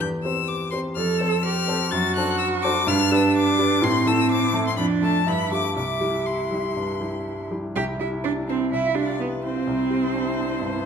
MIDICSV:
0, 0, Header, 1, 4, 480
1, 0, Start_track
1, 0, Key_signature, 0, "major"
1, 0, Tempo, 477707
1, 1, Time_signature, 4, 2, 24, 8
1, 4801, Tempo, 494641
1, 7681, Tempo, 478088
1, 10804, End_track
2, 0, Start_track
2, 0, Title_t, "Violin"
2, 0, Program_c, 0, 40
2, 2, Note_on_c, 0, 91, 93
2, 83, Note_off_c, 0, 91, 0
2, 239, Note_on_c, 0, 88, 86
2, 482, Note_on_c, 0, 86, 92
2, 497, Note_off_c, 0, 88, 0
2, 709, Note_off_c, 0, 86, 0
2, 715, Note_on_c, 0, 84, 100
2, 795, Note_off_c, 0, 84, 0
2, 959, Note_on_c, 0, 89, 103
2, 1190, Note_on_c, 0, 88, 109
2, 1205, Note_off_c, 0, 89, 0
2, 1440, Note_on_c, 0, 89, 123
2, 1455, Note_off_c, 0, 88, 0
2, 1919, Note_on_c, 0, 93, 119
2, 1935, Note_off_c, 0, 89, 0
2, 2163, Note_off_c, 0, 93, 0
2, 2169, Note_on_c, 0, 90, 111
2, 2393, Note_off_c, 0, 90, 0
2, 2399, Note_on_c, 0, 88, 113
2, 2479, Note_off_c, 0, 88, 0
2, 2634, Note_on_c, 0, 86, 120
2, 2890, Note_on_c, 0, 89, 127
2, 2905, Note_off_c, 0, 86, 0
2, 3132, Note_on_c, 0, 88, 114
2, 3147, Note_off_c, 0, 89, 0
2, 3371, Note_off_c, 0, 88, 0
2, 3384, Note_on_c, 0, 86, 127
2, 3854, Note_on_c, 0, 84, 127
2, 3869, Note_off_c, 0, 86, 0
2, 4094, Note_on_c, 0, 88, 116
2, 4109, Note_off_c, 0, 84, 0
2, 4328, Note_off_c, 0, 88, 0
2, 4332, Note_on_c, 0, 86, 120
2, 4680, Note_off_c, 0, 86, 0
2, 4695, Note_on_c, 0, 84, 99
2, 4786, Note_off_c, 0, 84, 0
2, 4792, Note_on_c, 0, 83, 111
2, 4870, Note_off_c, 0, 83, 0
2, 5042, Note_on_c, 0, 81, 108
2, 5290, Note_on_c, 0, 83, 113
2, 5304, Note_off_c, 0, 81, 0
2, 5521, Note_off_c, 0, 83, 0
2, 5525, Note_on_c, 0, 86, 106
2, 5756, Note_off_c, 0, 86, 0
2, 5764, Note_on_c, 0, 86, 94
2, 6240, Note_on_c, 0, 84, 77
2, 6254, Note_off_c, 0, 86, 0
2, 7446, Note_off_c, 0, 84, 0
2, 7693, Note_on_c, 0, 79, 87
2, 7773, Note_off_c, 0, 79, 0
2, 7944, Note_on_c, 0, 76, 70
2, 8024, Note_off_c, 0, 76, 0
2, 8178, Note_on_c, 0, 74, 65
2, 8258, Note_off_c, 0, 74, 0
2, 8429, Note_on_c, 0, 72, 73
2, 8510, Note_off_c, 0, 72, 0
2, 8675, Note_on_c, 0, 76, 74
2, 8755, Note_off_c, 0, 76, 0
2, 8911, Note_on_c, 0, 74, 68
2, 9160, Note_on_c, 0, 71, 77
2, 9175, Note_off_c, 0, 74, 0
2, 9380, Note_off_c, 0, 71, 0
2, 9386, Note_on_c, 0, 72, 97
2, 10804, Note_off_c, 0, 72, 0
2, 10804, End_track
3, 0, Start_track
3, 0, Title_t, "Grand piano"
3, 0, Program_c, 1, 0
3, 0, Control_c, 1, 64, 127
3, 3, Note_on_c, 1, 40, 72
3, 22, Control_c, 1, 64, 0
3, 170, Control_c, 1, 64, 127
3, 239, Note_off_c, 1, 40, 0
3, 248, Note_on_c, 1, 60, 54
3, 251, Note_on_c, 1, 67, 52
3, 256, Note_on_c, 1, 72, 63
3, 691, Note_off_c, 1, 60, 0
3, 693, Note_off_c, 1, 67, 0
3, 695, Note_off_c, 1, 72, 0
3, 729, Note_on_c, 1, 60, 58
3, 732, Note_on_c, 1, 67, 60
3, 736, Note_on_c, 1, 72, 62
3, 947, Note_off_c, 1, 60, 0
3, 948, Note_off_c, 1, 67, 0
3, 950, Note_off_c, 1, 72, 0
3, 970, Note_on_c, 1, 41, 78
3, 990, Control_c, 1, 64, 0
3, 1154, Control_c, 1, 64, 127
3, 1205, Note_off_c, 1, 41, 0
3, 1210, Note_on_c, 1, 60, 61
3, 1214, Note_on_c, 1, 69, 60
3, 1217, Note_on_c, 1, 72, 66
3, 1656, Note_off_c, 1, 60, 0
3, 1658, Note_off_c, 1, 69, 0
3, 1660, Note_off_c, 1, 72, 0
3, 1687, Note_on_c, 1, 60, 65
3, 1693, Note_on_c, 1, 69, 67
3, 1696, Note_on_c, 1, 72, 66
3, 1909, Note_off_c, 1, 60, 0
3, 1912, Note_off_c, 1, 69, 0
3, 1914, Note_off_c, 1, 72, 0
3, 1932, Note_on_c, 1, 42, 87
3, 1958, Control_c, 1, 64, 0
3, 2099, Control_c, 1, 64, 127
3, 2169, Note_off_c, 1, 42, 0
3, 2177, Note_on_c, 1, 62, 69
3, 2180, Note_on_c, 1, 69, 69
3, 2188, Note_on_c, 1, 72, 68
3, 2618, Note_off_c, 1, 62, 0
3, 2620, Note_off_c, 1, 69, 0
3, 2624, Note_off_c, 1, 72, 0
3, 2651, Note_on_c, 1, 62, 68
3, 2652, Note_on_c, 1, 69, 71
3, 2657, Note_on_c, 1, 72, 81
3, 2870, Note_off_c, 1, 62, 0
3, 2871, Note_off_c, 1, 69, 0
3, 2873, Note_off_c, 1, 72, 0
3, 2883, Note_on_c, 1, 43, 101
3, 2917, Control_c, 1, 64, 0
3, 3055, Control_c, 1, 64, 127
3, 3121, Note_off_c, 1, 43, 0
3, 3129, Note_on_c, 1, 62, 75
3, 3129, Note_on_c, 1, 67, 67
3, 3133, Note_on_c, 1, 71, 81
3, 3565, Note_off_c, 1, 62, 0
3, 3565, Note_off_c, 1, 67, 0
3, 3567, Note_off_c, 1, 71, 0
3, 3600, Note_on_c, 1, 62, 76
3, 3602, Note_on_c, 1, 67, 67
3, 3602, Note_on_c, 1, 71, 77
3, 3817, Note_off_c, 1, 62, 0
3, 3818, Note_off_c, 1, 67, 0
3, 3818, Note_off_c, 1, 71, 0
3, 3836, Note_on_c, 1, 45, 97
3, 3866, Control_c, 1, 64, 0
3, 4022, Control_c, 1, 64, 127
3, 4072, Note_off_c, 1, 45, 0
3, 4077, Note_on_c, 1, 57, 70
3, 4083, Note_on_c, 1, 64, 71
3, 4088, Note_on_c, 1, 69, 74
3, 4519, Note_off_c, 1, 57, 0
3, 4522, Note_off_c, 1, 64, 0
3, 4524, Note_off_c, 1, 69, 0
3, 4557, Note_on_c, 1, 57, 63
3, 4564, Note_on_c, 1, 64, 70
3, 4566, Note_on_c, 1, 69, 73
3, 4776, Note_off_c, 1, 57, 0
3, 4780, Note_off_c, 1, 64, 0
3, 4781, Note_off_c, 1, 69, 0
3, 4799, Note_on_c, 1, 41, 85
3, 4821, Control_c, 1, 64, 0
3, 5001, Control_c, 1, 64, 127
3, 5029, Note_off_c, 1, 41, 0
3, 5038, Note_on_c, 1, 57, 59
3, 5047, Note_on_c, 1, 62, 60
3, 5050, Note_on_c, 1, 69, 63
3, 5251, Note_off_c, 1, 57, 0
3, 5256, Note_off_c, 1, 62, 0
3, 5258, Note_off_c, 1, 69, 0
3, 5277, Note_on_c, 1, 43, 79
3, 5295, Control_c, 1, 64, 0
3, 5447, Control_c, 1, 64, 127
3, 5507, Note_off_c, 1, 43, 0
3, 5512, Note_on_c, 1, 57, 58
3, 5518, Note_on_c, 1, 65, 51
3, 5524, Note_on_c, 1, 67, 55
3, 5729, Note_off_c, 1, 57, 0
3, 5733, Note_off_c, 1, 65, 0
3, 5736, Note_off_c, 1, 67, 0
3, 5754, Note_on_c, 1, 36, 65
3, 5773, Control_c, 1, 64, 0
3, 5911, Control_c, 1, 64, 127
3, 5989, Note_off_c, 1, 36, 0
3, 5991, Note_on_c, 1, 55, 46
3, 5995, Note_on_c, 1, 64, 52
3, 5995, Note_on_c, 1, 67, 54
3, 6441, Note_off_c, 1, 55, 0
3, 6443, Note_off_c, 1, 64, 0
3, 6443, Note_off_c, 1, 67, 0
3, 6481, Note_on_c, 1, 55, 51
3, 6482, Note_on_c, 1, 64, 47
3, 6484, Note_on_c, 1, 67, 58
3, 6700, Note_off_c, 1, 55, 0
3, 6700, Note_off_c, 1, 64, 0
3, 6701, Note_off_c, 1, 67, 0
3, 6725, Note_on_c, 1, 43, 56
3, 6958, Note_off_c, 1, 43, 0
3, 6962, Note_on_c, 1, 55, 53
3, 6966, Note_on_c, 1, 64, 54
3, 6970, Note_on_c, 1, 67, 56
3, 7406, Note_off_c, 1, 55, 0
3, 7408, Note_off_c, 1, 64, 0
3, 7410, Note_off_c, 1, 67, 0
3, 7451, Note_on_c, 1, 55, 51
3, 7453, Note_on_c, 1, 64, 50
3, 7457, Note_on_c, 1, 67, 58
3, 7663, Note_off_c, 1, 55, 0
3, 7664, Note_off_c, 1, 64, 0
3, 7666, Note_off_c, 1, 67, 0
3, 7692, Note_on_c, 1, 36, 69
3, 7704, Control_c, 1, 64, 0
3, 7820, Note_on_c, 1, 64, 52
3, 7887, Control_c, 1, 64, 127
3, 7943, Note_on_c, 1, 67, 51
3, 8006, Note_off_c, 1, 64, 0
3, 8062, Note_on_c, 1, 64, 56
3, 8128, Note_off_c, 1, 67, 0
3, 8180, Note_on_c, 1, 62, 47
3, 8248, Note_off_c, 1, 64, 0
3, 8295, Note_off_c, 1, 62, 0
3, 8297, Note_on_c, 1, 64, 54
3, 8414, Note_on_c, 1, 62, 44
3, 8487, Note_off_c, 1, 64, 0
3, 8532, Note_on_c, 1, 64, 54
3, 8533, Note_off_c, 1, 62, 0
3, 8627, Note_off_c, 1, 36, 0
3, 8652, Note_off_c, 1, 64, 0
3, 8656, Note_on_c, 1, 36, 67
3, 8671, Control_c, 1, 64, 0
3, 8773, Note_on_c, 1, 65, 54
3, 8821, Control_c, 1, 64, 127
3, 8890, Note_on_c, 1, 67, 53
3, 8964, Note_off_c, 1, 65, 0
3, 9007, Note_on_c, 1, 65, 46
3, 9083, Note_off_c, 1, 67, 0
3, 9129, Note_on_c, 1, 64, 45
3, 9202, Note_off_c, 1, 65, 0
3, 9250, Note_off_c, 1, 64, 0
3, 9250, Note_on_c, 1, 65, 43
3, 9373, Note_on_c, 1, 64, 48
3, 9444, Note_off_c, 1, 65, 0
3, 9491, Note_on_c, 1, 65, 57
3, 9493, Note_off_c, 1, 64, 0
3, 9587, Note_off_c, 1, 36, 0
3, 9613, Note_off_c, 1, 65, 0
3, 9614, Note_on_c, 1, 36, 67
3, 9631, Control_c, 1, 64, 0
3, 9729, Note_on_c, 1, 64, 56
3, 9776, Control_c, 1, 64, 127
3, 9847, Note_on_c, 1, 67, 49
3, 9922, Note_off_c, 1, 64, 0
3, 9962, Note_on_c, 1, 64, 51
3, 10041, Note_off_c, 1, 67, 0
3, 10083, Note_on_c, 1, 62, 48
3, 10157, Note_off_c, 1, 64, 0
3, 10197, Note_on_c, 1, 64, 53
3, 10206, Note_off_c, 1, 62, 0
3, 10323, Note_on_c, 1, 62, 50
3, 10393, Note_off_c, 1, 64, 0
3, 10445, Note_off_c, 1, 62, 0
3, 10448, Note_on_c, 1, 64, 52
3, 10538, Note_off_c, 1, 36, 0
3, 10561, Note_on_c, 1, 43, 59
3, 10637, Note_off_c, 1, 64, 0
3, 10683, Note_on_c, 1, 64, 58
3, 10754, Note_off_c, 1, 43, 0
3, 10804, Note_off_c, 1, 64, 0
3, 10804, End_track
4, 0, Start_track
4, 0, Title_t, "Cello"
4, 0, Program_c, 2, 42
4, 975, Note_on_c, 2, 69, 89
4, 1424, Note_off_c, 2, 69, 0
4, 1452, Note_on_c, 2, 67, 87
4, 1923, Note_off_c, 2, 67, 0
4, 1929, Note_on_c, 2, 66, 107
4, 2874, Note_off_c, 2, 66, 0
4, 2894, Note_on_c, 2, 62, 104
4, 3833, Note_on_c, 2, 60, 104
4, 3848, Note_off_c, 2, 62, 0
4, 4792, Note_off_c, 2, 60, 0
4, 4799, Note_on_c, 2, 62, 99
4, 5264, Note_off_c, 2, 62, 0
4, 5276, Note_on_c, 2, 64, 79
4, 5740, Note_off_c, 2, 64, 0
4, 5746, Note_on_c, 2, 64, 73
4, 7408, Note_off_c, 2, 64, 0
4, 7694, Note_on_c, 2, 67, 95
4, 7774, Note_off_c, 2, 67, 0
4, 7933, Note_on_c, 2, 64, 81
4, 8013, Note_off_c, 2, 64, 0
4, 8178, Note_on_c, 2, 62, 97
4, 8258, Note_off_c, 2, 62, 0
4, 8417, Note_on_c, 2, 60, 90
4, 8650, Note_off_c, 2, 60, 0
4, 8667, Note_on_c, 2, 64, 91
4, 8889, Note_on_c, 2, 62, 76
4, 8904, Note_off_c, 2, 64, 0
4, 9130, Note_off_c, 2, 62, 0
4, 9136, Note_on_c, 2, 59, 77
4, 9217, Note_off_c, 2, 59, 0
4, 9375, Note_on_c, 2, 60, 94
4, 10804, Note_off_c, 2, 60, 0
4, 10804, End_track
0, 0, End_of_file